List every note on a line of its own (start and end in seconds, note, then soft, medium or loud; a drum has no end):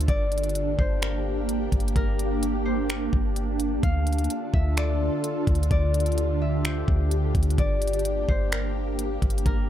0.00 7.54 D4 medium
0.00 0.78 C5 medium
0.00 0.64 E5 medium
0.00 closed hi-hat medium
0.08 0.76 G1 loud
0.08 3.80 A#3 medium
0.08 3.80 G4 medium
0.08 1.93 D5 loud
0.08 kick loud
0.08 closed hi-hat medium
0.32 closed hi-hat medium
0.38 closed hi-hat medium
0.44 closed hi-hat soft
0.49 closed hi-hat soft
0.55 closed hi-hat medium
0.79 1.69 G1 loud
0.79 2.65 C5 medium
0.79 kick medium
1.02 1.96 A#4 medium
1.02 finger snap loud
1.02 closed hi-hat medium
1.49 closed hi-hat medium
1.72 1.95 G1 loud
1.72 kick medium
1.72 closed hi-hat medium
1.80 closed hi-hat medium
1.88 closed hi-hat medium
1.96 3.09 G1 loud
1.96 2.89 A#4 loud
1.96 kick loud
1.96 closed hi-hat medium
2.19 closed hi-hat medium
2.43 closed hi-hat medium
2.65 4.63 C5 medium
2.90 5.02 A#4 medium
2.90 finger snap loud
2.90 closed hi-hat medium
3.13 3.80 G1 loud
3.13 kick loud
3.36 closed hi-hat medium
3.60 closed hi-hat medium
3.83 4.28 D2 loud
3.83 7.54 D3 medium
3.83 7.55 F4 medium
3.83 5.69 A4 medium
3.83 4.59 F5 medium
3.83 kick loud
3.83 closed hi-hat medium
4.07 closed hi-hat medium
4.13 closed hi-hat medium
4.18 closed hi-hat soft
4.24 closed hi-hat soft
4.30 closed hi-hat medium
4.53 5.10 D2 loud
4.53 6.26 E5 medium
4.53 kick loud
4.77 5.71 D5 medium
4.77 finger snap loud
4.77 closed hi-hat medium
5.24 closed hi-hat medium
5.47 5.70 D2 loud
5.47 kick medium
5.47 closed hi-hat medium
5.55 closed hi-hat medium
5.63 closed hi-hat medium
5.71 6.84 D2 loud
5.71 9.70 G4 medium
5.71 7.56 D5 loud
5.71 kick loud
5.71 closed hi-hat medium
5.94 closed hi-hat medium
6.00 closed hi-hat medium
6.06 closed hi-hat soft
6.12 closed hi-hat soft
6.18 closed hi-hat medium
6.42 8.14 E5 medium
6.65 8.28 C5 medium
6.65 finger snap loud
6.65 closed hi-hat medium
6.88 7.33 D2 loud
6.88 kick loud
7.11 closed hi-hat medium
7.35 7.57 D2 loud
7.35 kick medium
7.35 closed hi-hat medium
7.43 closed hi-hat medium
7.50 closed hi-hat medium
7.58 8.26 G1 loud
7.58 9.70 A#3 medium
7.58 9.44 D4 medium
7.58 9.43 D5 loud
7.58 kick loud
7.58 closed hi-hat medium
7.82 closed hi-hat medium
7.88 closed hi-hat medium
7.93 closed hi-hat soft
7.99 closed hi-hat soft
8.05 closed hi-hat medium
8.29 9.19 G1 loud
8.29 9.70 C5 medium
8.29 kick medium
8.52 9.45 A#4 medium
8.52 finger snap loud
8.52 closed hi-hat medium
8.99 closed hi-hat medium
9.22 9.45 G1 loud
9.22 kick medium
9.22 closed hi-hat medium
9.30 closed hi-hat medium
9.38 closed hi-hat medium
9.46 9.70 G1 loud
9.46 9.70 A#4 loud
9.46 kick loud
9.46 closed hi-hat medium